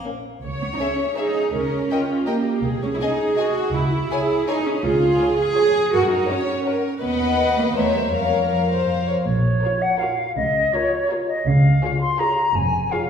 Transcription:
0.05 0.34 A#3 soft
0.05 0.33 C#4 soft
0.05 0.34 F5 soft
0.43 0.73 C#2 medium
0.43 1.13 C#5 medium
0.62 0.66 B3 medium
0.73 0.80 D#4 soft
0.79 1.17 C#4 medium
0.79 0.87 G#4 soft
0.79 0.87 C#5 soft
0.79 0.88 E5 soft
1.15 1.53 D#4 medium
1.15 1.24 G#4 soft
1.15 1.54 G#4 soft
1.15 1.23 C#5 soft
1.15 1.25 E5 soft
1.54 1.83 C#2 medium
1.54 2.26 C#4 medium
1.54 1.90 A#4 medium
1.91 2.27 F4 soft
1.91 1.99 A#4 soft
1.91 1.99 D#5 soft
1.91 1.99 G5 soft
2.26 2.63 A#3 medium
2.26 2.64 G4 soft
2.26 2.34 A#4 soft
2.26 2.34 D#5 soft
2.26 2.35 G5 soft
2.64 2.93 C2 medium
2.64 3.75 G#4 medium
2.83 2.87 C#4 medium
2.94 3.01 E4 soft
3.01 3.38 D#4 medium
3.01 3.09 G#4 soft
3.01 3.09 D#5 soft
3.01 3.09 G#5 soft
3.37 3.74 F#4 medium
3.37 3.46 G#4 soft
3.37 3.45 D#5 soft
3.37 3.46 G#5 soft
3.75 4.04 C#2 medium
3.75 4.10 E4 medium
3.75 4.48 E4 medium
4.11 4.83 G#4 medium
4.11 4.19 G#4 soft
4.11 4.20 C#5 soft
4.11 4.19 G#5 medium
4.47 4.65 D#4 medium
4.47 4.57 G#4 soft
4.47 4.56 C#5 soft
4.47 4.56 G#5 medium
4.65 4.84 C#4 medium
4.83 5.12 C#2 medium
4.83 5.38 F4 medium
4.83 5.91 G#4 medium
5.21 5.48 G#4 medium
5.21 5.48 C#5 medium
5.21 5.48 G#5 medium
5.38 5.92 G#4 medium
5.56 5.83 G#4 medium
5.56 5.83 C#5 medium
5.56 5.84 G#5 medium
5.92 6.21 F#2 medium
5.92 6.11 F#4 medium
5.92 6.29 A#4 medium
6.11 6.29 D#4 medium
6.28 6.66 C#4 medium
6.28 6.56 A#4 medium
6.28 6.56 C#5 medium
6.28 6.65 C#5 medium
6.28 6.57 F#5 medium
6.65 7.01 A#4 medium
6.65 6.93 A#4 medium
6.65 6.93 C#5 medium
6.65 6.93 F#5 medium
7.01 7.72 D#2 medium
7.01 7.53 B3 medium
7.01 7.72 B4 soft
7.01 7.74 B4 medium
7.01 7.71 D#5 medium
7.01 7.72 F#5 medium
7.58 7.65 A#3 medium
7.76 8.13 E2 soft
7.76 7.94 A3 medium
7.76 8.12 A#4 soft
7.76 8.13 C5 medium
7.76 8.12 C#5 soft
7.76 8.12 E5 soft
7.94 8.02 G3 medium
8.13 8.88 F2 soft
8.13 8.50 G3 medium
8.13 8.50 A#4 soft
8.13 9.06 A#4 soft
8.13 8.50 C#5 soft
8.13 8.50 F5 soft
8.51 8.88 F3 soft
8.51 8.69 A#4 soft
8.51 8.88 F5 soft
8.71 9.07 C5 medium
8.89 9.07 F2 soft
8.89 9.08 F5 soft
9.07 9.27 C5 medium
9.07 9.15 C#5 soft
9.26 9.56 A#1 medium
9.26 9.55 A#2 medium
9.26 9.83 C#5 medium
9.62 9.91 F4 medium
9.62 9.90 A#4 medium
9.62 9.91 C#5 medium
9.81 10.01 F#5 medium
9.99 10.28 F4 medium
9.99 10.27 A#4 medium
9.99 10.28 C#5 medium
9.99 10.35 F5 medium
10.35 10.66 C#2 medium
10.35 10.66 C#3 medium
10.35 10.75 D#5 medium
10.73 11.01 F4 medium
10.73 11.01 A#4 medium
10.73 11.10 C#5 medium
10.73 11.01 C#5 medium
11.09 11.37 F4 medium
11.09 11.37 A#4 medium
11.09 11.38 C#5 medium
11.27 11.48 D#5 medium
11.47 11.75 C#2 medium
11.47 11.76 C#3 medium
11.47 11.99 F5 medium
11.83 12.10 F4 medium
11.83 12.10 G#4 medium
11.83 12.10 C#5 medium
12.00 12.20 C6 medium
12.19 12.46 F4 medium
12.19 12.47 G#4 medium
12.19 12.47 C#5 medium
12.19 12.56 A#5 medium
12.55 12.85 F1 medium
12.55 12.85 F2 medium
12.55 12.93 G#5 medium
12.91 13.10 F4 medium
12.91 13.10 G#4 medium
12.91 13.10 C#5 medium
12.91 13.10 F5 medium

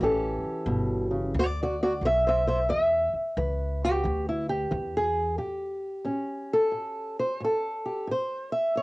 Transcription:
0.01 0.42 A1 medium
0.01 0.64 A2 medium
0.01 1.36 E3 medium
0.01 1.34 C#4 medium
0.01 1.34 G4 medium
0.01 1.34 A4 medium
0.44 muted upright bass stroke soft
0.66 1.32 G1 medium
0.66 1.10 B2 medium
1.11 1.35 C#3 medium
1.34 2.00 D2 medium
1.34 1.98 D3 medium
1.39 1.45 F#4 medium
1.39 1.60 D5 loud
1.63 1.74 F#4 medium
1.63 1.82 D5 medium
1.83 1.92 F#4 medium
1.83 2.04 D5 medium
2.01 2.67 B1 medium
2.01 2.65 D3 medium
2.06 2.27 E5 loud
2.27 2.40 C5 medium
2.27 2.47 E5 medium
2.47 2.58 C5 medium
2.47 2.69 E5 loud
2.69 3.10 E2 medium
2.69 3.32 E3 medium
2.69 3.13 E5 loud
3.13 muted upright bass stroke soft
3.37 4.02 C#2 medium
3.37 4.00 E3 medium
3.37 4.95 B4 soft
3.85 4.28 G4 loud
4.04 4.70 D2 medium
4.04 4.67 E3 medium
4.29 4.49 E4 medium
4.49 4.94 G4 medium
4.71 5.37 E2 medium
4.71 5.34 E3 medium
4.97 5.38 G#4 loud
5.38 6.01 A2 medium
5.38 7.85 G4 soft
6.04 6.68 A2 medium
6.04 8.14 C#4 soft
6.53 7.19 A4 loud
6.72 7.35 A2 medium
7.19 7.42 C5 medium
7.40 8.03 A2 medium
7.44 8.10 A4 medium
7.85 8.10 G4 soft
8.07 8.70 A2 medium
8.07 8.52 C5 medium
8.52 8.76 E5 medium
8.76 8.82 A2 medium
8.76 8.82 C#5 medium

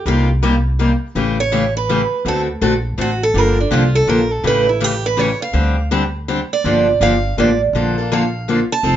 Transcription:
0.06 0.94 C2 medium
0.06 0.27 C3 medium
0.06 0.27 G3 medium
0.06 0.27 A#3 medium
0.06 0.28 D#4 medium
0.06 0.29 F4 medium
0.06 0.28 G4 medium
0.43 0.54 C3 medium
0.43 0.54 G3 medium
0.43 0.54 A#3 medium
0.43 0.54 D#4 medium
0.43 0.54 G4 loud
0.79 0.90 C3 medium
0.79 0.91 G3 medium
0.79 0.91 A#3 medium
0.79 0.91 D#4 medium
0.79 0.91 G4 medium
1.15 2.03 A1 medium
1.15 1.37 C#3 medium
1.15 1.37 E3 medium
1.15 1.37 A3 medium
1.15 1.37 C#4 medium
1.15 1.37 G4 medium
1.40 1.73 C#5 medium
1.52 1.63 C#3 medium
1.52 1.64 E3 medium
1.52 1.64 A3 medium
1.52 1.64 C#4 medium
1.52 1.64 G4 medium
1.77 2.23 B4 medium
1.89 2.00 C#3 medium
1.89 2.00 E3 medium
1.89 2.01 A3 medium
1.89 2.00 C#4 medium
1.89 2.01 G4 medium
2.25 2.54 D2 medium
2.25 2.47 D3 medium
2.25 2.47 A3 medium
2.25 2.47 C4 medium
2.25 2.47 F#4 medium
2.25 2.47 A4 medium
2.25 2.41 A4 medium
2.61 2.93 A#1 medium
2.61 2.73 D3 medium
2.61 2.73 A3 medium
2.61 2.73 C4 medium
2.61 2.73 F#4 loud
2.61 2.73 A4 loud
2.98 3.29 A1 medium
2.98 3.09 D3 medium
2.98 3.10 A3 medium
2.98 3.09 C4 medium
2.98 3.10 F#4 medium
2.98 3.22 F#4 medium
2.98 3.10 A4 medium
3.23 3.38 A4 medium
3.34 3.64 G1 medium
3.34 3.56 D3 medium
3.34 3.56 F3 medium
3.34 3.56 A#3 medium
3.34 3.56 D4 medium
3.34 3.56 G4 medium
3.34 3.58 A#4 loud
3.60 3.73 D4 soft
3.71 4.02 C2 medium
3.71 3.82 D3 medium
3.71 3.83 F3 medium
3.71 3.83 A#3 medium
3.71 3.83 D4 loud
3.71 3.94 F4 medium
3.71 3.83 G4 medium
3.95 4.08 A4 medium
4.07 4.39 A#1 medium
4.07 4.19 D3 medium
4.07 4.19 F3 medium
4.07 4.19 A#3 medium
4.07 4.19 D4 medium
4.07 4.20 G4 medium
4.07 4.32 A#4 medium
4.32 4.45 A4 medium
4.43 5.32 A1 medium
4.43 4.65 C#3 medium
4.43 4.66 E3 medium
4.43 4.65 A3 medium
4.43 4.66 C#4 medium
4.43 4.66 G4 medium
4.43 4.68 B4 medium
4.69 4.84 E4 medium
4.80 4.92 C#3 medium
4.80 4.92 E3 medium
4.80 4.92 A3 medium
4.80 4.93 C#4 medium
4.80 4.92 G4 medium
4.80 5.05 G4 medium
5.06 5.19 B4 medium
5.17 5.28 C#3 medium
5.17 5.29 E3 medium
5.17 5.29 A3 medium
5.17 5.29 C#4 medium
5.17 5.29 G4 medium
5.17 5.40 C#5 medium
5.42 5.88 F5 medium
5.53 6.42 D2 medium
5.53 5.75 D3 medium
5.53 5.75 G3 medium
5.53 5.75 C4 medium
5.53 5.75 D4 medium
5.53 5.75 G4 medium
5.91 6.02 D3 medium
5.91 6.02 G3 loud
5.91 6.02 C4 medium
5.91 6.03 D4 medium
5.91 6.03 G4 loud
6.28 6.39 D3 medium
6.28 6.39 G3 medium
6.28 6.39 C4 medium
6.28 6.39 D4 medium
6.28 6.39 G4 medium
6.53 6.99 D5 medium
6.64 6.93 G1 medium
6.64 6.86 D3 medium
6.64 6.86 F3 medium
6.64 6.86 A#3 medium
6.64 6.86 D4 medium
6.64 6.86 G4 medium
7.00 7.32 G1 medium
7.00 7.12 D3 medium
7.00 7.12 F3 medium
7.00 7.12 A#3 loud
7.00 7.13 D4 loud
7.00 7.13 G4 loud
7.00 7.36 F5 medium
7.37 7.68 A1 medium
7.37 7.49 D3 medium
7.37 7.49 F3 medium
7.37 7.49 A#3 medium
7.37 7.49 D4 medium
7.37 7.49 G4 medium
7.37 7.60 D5 medium
7.73 8.61 A#1 medium
7.73 7.95 D3 medium
7.73 7.96 F3 medium
7.73 7.96 A#3 medium
7.73 7.96 D4 medium
7.73 7.96 A4 medium
7.98 8.10 A#3 medium
7.98 8.10 D4 medium
7.98 8.11 A4 medium
8.12 8.22 D3 medium
8.12 8.22 F3 medium
8.12 8.22 A#3 loud
8.12 8.22 D4 loud
8.12 8.22 A4 medium
8.12 8.67 F5 medium
8.48 8.59 D3 medium
8.48 8.59 F3 medium
8.48 8.59 A#3 medium
8.48 8.59 D4 medium
8.48 8.59 A4 medium
8.72 8.96 A5 loud
8.83 8.96 F1 medium
8.83 8.96 F3 medium
8.83 8.96 C4 medium
8.83 8.96 D#4 medium
8.83 8.96 A4 medium

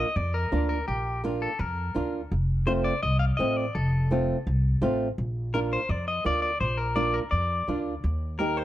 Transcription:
0.00 0.16 D#5 medium
0.16 0.45 F2 medium
0.16 0.35 D5 medium
0.34 0.68 A#4 medium
0.52 0.81 D2 medium
0.52 0.77 A#3 medium
0.52 0.77 D4 medium
0.52 0.78 F4 medium
0.69 0.87 A#4 medium
0.88 1.46 A#1 medium
0.88 1.21 G4 medium
1.24 1.49 A#3 medium
1.24 1.49 D4 medium
1.24 1.49 F4 medium
1.42 1.59 A4 medium
1.59 1.88 F2 medium
1.59 2.13 A#4 medium
1.94 2.25 D2 medium
1.94 2.20 A#3 medium
1.94 2.20 D4 medium
1.94 2.21 F4 medium
2.32 2.89 F1 medium
2.66 2.92 A3 medium
2.66 2.92 C4 medium
2.66 2.93 F4 medium
2.66 2.72 C5 medium
2.84 3.02 D5 medium
3.03 3.32 C2 medium
3.03 3.19 D#5 medium
3.19 3.24 F5 medium
3.37 3.68 A1 medium
3.37 3.64 A3 medium
3.37 3.64 C4 medium
3.37 3.65 F4 medium
3.37 3.57 D#5 medium
3.57 3.75 D5 medium
3.75 4.32 F1 medium
3.75 4.78 A4 medium
4.11 4.36 A3 medium
4.11 4.36 C4 medium
4.11 4.36 F4 medium
4.47 4.75 C2 medium
4.81 5.10 A1 medium
4.81 5.07 A3 medium
4.81 5.07 C4 medium
4.81 5.07 F4 medium
5.18 5.75 A#1 medium
5.54 5.79 A#3 medium
5.54 5.79 D4 medium
5.54 5.79 F4 medium
5.54 5.59 A#4 medium
5.73 5.89 C5 medium
5.89 6.18 F2 medium
5.89 6.07 D5 medium
6.08 6.26 D#5 medium
6.24 6.54 D2 medium
6.24 6.50 A#3 medium
6.24 6.50 D4 medium
6.24 6.50 F4 medium
6.24 6.41 D5 medium
6.42 6.60 D5 medium
6.60 7.18 A#1 medium
6.60 6.77 C5 medium
6.78 6.95 A#4 medium
6.95 7.21 A#3 medium
6.95 7.21 D4 medium
6.95 7.22 F4 medium
6.95 7.15 D5 medium
7.14 7.19 A#4 medium
7.31 7.61 F2 medium
7.31 7.81 D5 medium
7.68 7.97 D2 medium
7.68 7.93 A#3 medium
7.68 7.93 D4 medium
7.68 7.93 F4 medium
8.04 8.61 D#2 medium
8.39 8.64 A#3 medium
8.39 8.64 D#4 medium
8.39 8.64 G4 medium
8.39 8.57 A#4 medium
8.57 8.64 C5 medium

